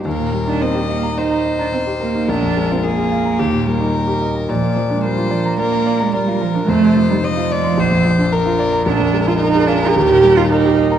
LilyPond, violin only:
\new Staff \with { instrumentName = "Violin" } { \time 4/4 \key ees \major \tempo 4 = 109 bes'4 ees''4 c''2 | bes'4 aes'4 g'8 bes'4. | d''4 c''4 bes'4 bes'4 | c''4 ees''8 d''8 c''4 bes'4 |
bes'1 | }